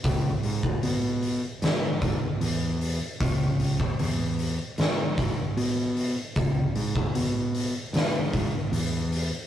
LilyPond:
<<
  \new Staff \with { instrumentName = "Fingered electric bass" } { \clef bass \time 4/4 \key cis \minor \tempo 4 = 76 cis,8 gis,8 b,4 gis,4 e,4 | cis,4 e,4 gis,4 b,4 | cis,8 gis,8 b,4 gis,4 e,4 | }
  \new DrumStaff \with { instrumentName = "Drums" } \drummode { \time 4/4 <hho bd>8 hho16 bd16 hho8 hho8 <hho sn>8 <hho bd>8 hho8 hho8 | <hho bd>8 hho16 bd16 hho8 hho8 <hho sn>8 <hho bd>8 hho8 hho8 | <hho bd>8 hho16 bd16 hho8 hho8 <hho sn>8 <hho bd>8 hho8 hho8 | }
>>